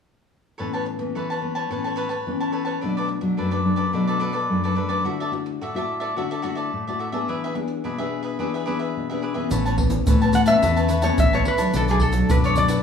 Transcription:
0.58 A2 E3 B3 C#4 A4 B4 C#5 A5
0.73 B4 C#5 A5
0.86 muted cavaquinho stroke
0.99 E3 B3 C#4, muted cavaquinho stroke
1.15 E3 A4 B4 C#5 A5
1.30 B4 C#5 A5
1.42 E3 B3 C#4
1.55 B4 C#5 A5
1.70 A2 E3 B3 C#4 A4 B4 C#5 A5
1.84 B4 C#5 A5
1.96 A4 B4 C#5 A5
2.09 B4 C#5 A5
2.27 E3 B3 C#4
2.40 B4 C#5 A5
2.52 A4 B4 C#5 A5
2.65 B4 C#5 A5
2.81 B2 F#3 A3 D4 A4 B4 D5
2.97 A4 B4 D5
3.08 muted cavaquinho stroke
3.21 F#3 A3 D4, muted cavaquinho stroke
3.37 F#2 D4 A4 B4 D5
3.51 A4 B4 D5
3.65 F#3 A3 D4
3.76 A4 B4 D5
3.93 B2 F#3 A3 D4 A4 B4 D5
4.07 A4 B4 D5
4.20 D4 A4 B4 D5
4.33 A4 B4 D5
4.49 F#2 F#3 A3 D4
4.64 A4 B4 D5
4.75 F#3 A3 D4 A4 B4 D5
4.89 A4 B4 D5
5.04 D3 A3 E4 F#4 A4 D5 E5
5.20 A4 D5 E5
5.31 A3 E4 F#4, muted cavaquinho stroke
5.46 muted cavaquinho stroke
5.61 A2 F#4 A4 D5 E5
5.74 A3 E4 F#4 A4 D5 E5
6.00 A4 D5 E5
6.16 D3 A3 E4 F#4 A4 D5 E5
6.31 A4 D5 E5
6.42 A3 E4 F#4 A4 D5 E5
6.55 A4 D5 E5
6.73 A2
6.87 A3 E4 F#4 A4 D5 E5
6.99 F#4 A4 D5 E5
7.12 B3 D4 G#4 A4 D5 E5
7.28 E3 D4 G#4 B4 E5
7.44 G#4 B4 E5
7.55 B3 D4 G#4, muted cavaquinho stroke
7.68 muted cavaquinho stroke
7.84 B2 D4 G#4 B4 E5
7.98 B3 D4 G#4 B4 E5
8.23 G#4 B4 E5
8.39 E3 B3 D4 G#4 B4 E5
8.54 G#4 B4 E5
8.66 B3 D4 G#4 B4 E5
8.79 G#4 B4 E5
8.96 B2
9.10 B3 D4 G#4 B4 E5
9.22 D4 G#4 B4 E5
9.34 E3 B3 C#4 G#4 B4 E5
9.51 A1 A2 A4 B4 C#5 A5, pandeiro, shaker, surdo
9.65 B4 C#5 A5, pandeiro, shaker
9.77 E3 B3 C#4, muted cavaquinho stroke, pandeiro, surdo
9.90 muted cavaquinho stroke, pandeiro, shaker
10.07 A2 E3 A4 B4 C#5 A5, pandeiro, shaker, surdo
10.21 E3 B3 C#4 B4 C#5 A5, pandeiro, shaker
10.33 F#5, pandeiro, shaker
10.46 E3 B3 C#4 B4 C#5 E5 A5, pandeiro, shaker
10.62 E2 A2 E3 B3 C#4 A4 B4 C#5 A5, pandeiro, shaker, surdo
10.76 B4 C#5 A5, pandeiro, shaker
10.88 A4 B4 C#5 A5, pandeiro, shaker
11.02 E3 B3 C#4 B4 C#5 A5, pandeiro, shaker
11.18 A1 E3 E5, pandeiro, shaker, surdo
11.33 E3 B3 C#4 B4 C#5 A5, pandeiro, shaker
11.45 A4 B4 C#5 A5, pandeiro
11.58 F#3 A3 D4 B4 C#5 A5, pandeiro, shaker
11.73 B1 B2 D4 A4 B4 D5, pandeiro, shaker, surdo
11.88 F#3 A3 D4 G#4 A4 B4 D5, pandeiro, shaker
12.00 A4, muted cavaquinho stroke, pandeiro, surdo
12.12 F#3 A3 D4, muted cavaquinho stroke, pandeiro, shaker
12.29 F#2 B2 D4 A4 B4 D5, pandeiro, shaker, surdo
12.44 A4 B4 C#5 D5, pandeiro, shaker
12.56 F#3 A3 D4 D5, pandeiro, shaker
12.68 A4 B4 D5, pandeiro, shaker

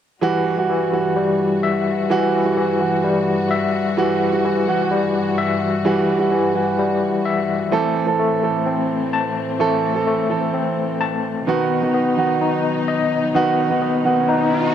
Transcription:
0.22 G2 E3 G3 F#4
0.57 E3 G3 F#4
0.69 E3
0.92 E3 G3 F#4
1.16 G3
1.63 E5
2.10 E3 G3 F#4
2.45 E3 G3 F#4
2.57 E3
2.79 E3 G3 F#4
3.04 G3
3.51 E5
3.97 E3 G3 F#4
4.32 E3 G3 F#4
4.44 E3
4.67 E3 G3 F#4
4.91 G3
5.38 E5
5.85 E3 G3 F#4
6.19 E3 G3 F#4
6.32 E3
6.54 E3 G3 F#4
6.79 G3
7.26 E5
7.72 A2 E3 A3 C4 A4
8.06 E3 C4 A4
8.19 A3
8.42 E3 C4 A4
8.66 C4
9.13 A5
9.59 E3 A3 C4 A4
9.95 E3 C4 A4
10.07 A3
10.29 E3 C4 A4
10.54 C4
11.00 A5
11.47 B2 D#3 F#3 B3 D#4 F#4
11.82 D#3 B3 F#4
11.94 B3
12.17 D#3 B3 F#4
12.41 D#4
12.88 D#5
13.34 D#3 B3 F#4, riser
13.69 D#3 B3 F#4
13.82 B3
14.04 D#3 B3 F#4
14.29 D#4

